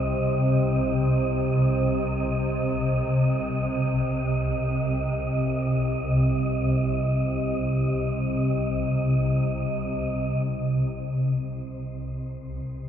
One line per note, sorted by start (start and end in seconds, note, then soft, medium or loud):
0.00 10.48 C2 medium
0.00 10.47 C3 medium
0.00 10.49 C4 medium
0.00 10.48 G4 medium
0.00 10.48 C5 medium
0.00 10.50 D#5 medium
10.48 12.89 C2 medium
10.48 12.89 C3 medium
10.48 12.89 C5 medium